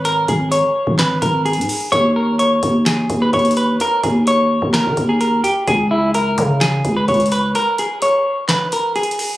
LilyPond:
<<
  \new Staff \with { instrumentName = "Clean electric guitar" } { \time 4/4 \key dis \phrygian \tempo 4 = 128 ais'8 gis'8 cis''4 b'8 ais'8 gis'4 | cis''8 ais'8 cis''4 gis'8. b'16 cis''8 b'8 | ais'8 gis'8 cis''4 ais'8. gis'16 ais'8 g'8 | gis'8 e'8 ais'4 gis'8. b'16 cis''8 b'8 |
ais'8 gis'8 cis''4 b'8 ais'8 gis'4 | }
  \new Staff \with { instrumentName = "808-style bass" } { \clef bass \time 4/4 \key dis \phrygian gis,,8 gis,,8. r8 gis,,8. gis,,8. gis,16 r8 | dis,4. dis,4 dis,8 dis,4 | r8 dis,4~ dis,16 dis,8 dis16 dis,4 r8 | cis,4. cis4 cis,8 cis,4 |
r1 | }
  \new DrumStaff \with { instrumentName = "Drums" } \drummode { \time 4/4 hh8 <hh bd>8 hh8. bd16 <hc hh sn>8 <hh bd>8 \tuplet 3/2 { hh16 hh16 hh16 hho16 r16 r16 } | <hh bd>4 hh8 <hh bd>8 <hc hh sn>8 <hh bd>8 <hh bd>32 hh32 hh32 hh32 hh8 | hh8 <hh bd>8 hh8. bd16 <hc hh sn>8 <hh bd>8 hh8 hh8 | <hh bd>4 hh8 <hh bd>8 <hc hh sn>8 <hh bd>8 <hh bd>32 hh32 hh32 hh32 hh8 |
hh8 hh8 hh4 <hc hh sn>8 hh8 \tuplet 3/2 { hh16 hh16 hh16 hho16 r16 r16 } | }
>>